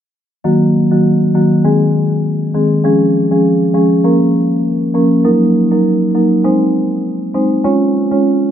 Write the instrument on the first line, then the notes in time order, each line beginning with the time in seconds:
marimba
0.44 D#3 F#3 A#3 F#4
0.91 D#3 F#3 A#3 F#4
1.34 D#3 F#3 A#3 F#4
1.64 D#3 G#3 C4 G#4
2.54 D#3 G#3 C4 G#4
2.84 F3 G#3 C#4 G#4
3.31 F3 G#3 C#4 G#4
3.74 F3 G#3 C#4 G#4
4.04 F3 A#3 C#4 A#4
4.94 F3 A#3 C#4 A#4
5.24 F#3 A#3 D#4 A#4
5.71 F#3 A#3 D#4 A#4
6.15 F#3 A#3 D#4 A#4
6.44 G#3 C4 D#4 C5
7.34 G#3 C4 D#4 C5
7.64 G#3 C#4 F4 C#5
8.11 G#3 C#4 F4 C#5